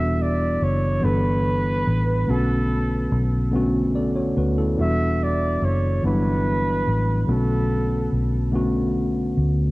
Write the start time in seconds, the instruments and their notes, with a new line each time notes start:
Already playing: fingered electric bass E1, tine electric piano E3 G3 B3 D4 F#4, flugelhorn E5
0.22 flugelhorn D5
0.62 fingered electric bass F#1, flugelhorn C#5
1.00 fingered electric bass G1, tine electric piano E3 G3 B3 D4, flugelhorn B4
1.05 tine electric piano A4
1.87 fingered electric bass A1
2.26 fingered electric bass B1, tine electric piano D3 A3 B3 C#4
2.30 tine electric piano F#4, flugelhorn A4
3.12 fingered electric bass B1
3.51 tine electric piano D3 A3 B3 C#4
3.55 tine electric piano F#4
3.95 tine electric piano A4 D5
4.16 tine electric piano F#4 C#5
4.37 fingered electric bass D2, tine electric piano F#4 B4
4.58 tine electric piano E4 A4
4.76 fingered electric bass E1, tine electric piano E3 G3 B3 D4
4.80 tine electric piano F#4, flugelhorn E5
5.23 flugelhorn D5
5.62 fingered electric bass F#1, flugelhorn C#5
6.02 fingered electric bass G1, tine electric piano E3 F#3 B3 D4
6.06 tine electric piano G3 E4, flugelhorn B4
6.87 fingered electric bass A1
7.26 fingered electric bass B1, tine electric piano D3 A3 B3 C#4
7.31 tine electric piano F#4, flugelhorn A4
8.12 fingered electric bass B1
8.51 tine electric piano D3 A3 B3 C#4
8.56 tine electric piano F#4
9.37 fingered electric bass D2